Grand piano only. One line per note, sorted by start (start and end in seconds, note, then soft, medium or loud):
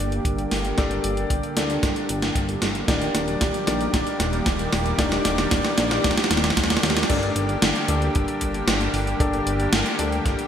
0.00 0.75 D4 medium
0.00 0.75 G4 medium
0.00 0.75 A4 medium
0.00 0.75 A#4 medium
0.00 0.75 D5 medium
0.78 1.54 D4 medium
0.78 1.54 G4 medium
0.78 1.54 A4 medium
0.78 1.54 A#4 medium
0.78 1.54 D5 loud
1.57 2.85 D4 medium
1.57 2.85 G4 medium
1.57 2.85 A4 medium
1.57 2.85 A#4 medium
1.57 2.85 D5 medium
2.88 3.64 D4 loud
2.88 3.64 D#4 medium
2.88 3.64 G4 medium
2.88 3.64 A#4 medium
2.88 3.64 D5 loud
3.67 4.96 D4 medium
3.67 4.96 D#4 medium
3.67 4.96 G4 medium
3.67 4.96 A#4 medium
3.67 4.96 D5 loud
4.99 5.75 D4 loud
4.99 5.75 D#4 medium
4.99 5.75 G4 medium
4.99 5.75 A#4 medium
4.99 5.75 D5 loud
5.78 7.06 D4 medium
5.78 7.06 D#4 medium
5.78 7.06 G4 medium
5.78 7.06 A#4 medium
5.78 7.06 D5 medium
7.09 7.85 D4 medium
7.09 7.85 G4 medium
7.09 7.85 A4 medium
7.09 7.85 A#4 medium
7.09 7.85 D5 loud
7.88 9.17 D4 medium
7.88 9.17 G4 medium
7.88 9.17 A4 medium
7.88 9.17 A#4 medium
7.88 9.17 D5 medium
9.20 9.96 D4 loud
9.20 9.96 G4 medium
9.20 9.96 A4 medium
9.20 9.96 A#4 medium
9.20 9.96 D5 loud
9.99 10.47 D4 medium
9.99 10.47 G4 medium
9.99 10.47 A4 medium
9.99 10.47 A#4 medium
9.99 10.47 D5 medium